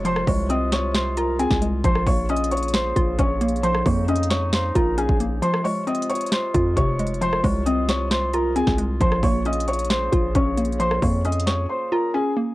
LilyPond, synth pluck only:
\new Staff \with { instrumentName = "Synth pluck" } { \time 4/4 \key bes \dorian \tempo 4 = 134 <c f aes f'>8 aes8 c'4. f'8 c'8 aes8 | f8 bes8 des'4. f'8 des'8 bes8 | f8 bes8 des'4. f'8 des'8 bes8 | f8 aes8 c'4. f'8 c8 aes8 |
f8 aes8 c'4. f'8 c'8 aes8 | f8 bes8 des'4. f'8 des'8 bes8 | f8 bes8 des'4. f'8 des'8 bes8 | }